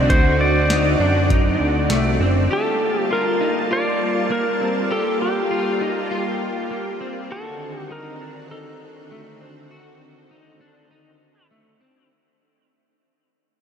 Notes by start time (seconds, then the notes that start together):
Already playing: D3 C4 F#4 D5
0.10 D2 F#4 C5 D5, kick, closed hi-hat
0.41 D5
0.70 D#4, snare, closed hi-hat
0.99 F#2 D4
1.30 D#4, kick, closed hi-hat
1.60 D2
1.90 C2 A3, snare, closed hi-hat
2.20 F#1 C4
2.50 G3 A#3 F4 G4 A4 A5
2.99 G4
3.11 F4 A#4
3.41 D#4
3.71 F4 D5
4.30 A#3 A#4
4.61 C4
4.91 G4 A4
5.22 G4
5.51 F4
5.81 D#4
6.11 F4
6.71 A#3
7.00 C4
7.31 D3 D#3 C4 F#4 A4
7.79 G4
7.91 D#4 A#4
8.21 D4
8.51 D#4 A4
9.11 A3
9.41 C4
9.71 F#4
10.31 D#4
10.61 D4
10.91 D#4
11.51 A3
11.81 C4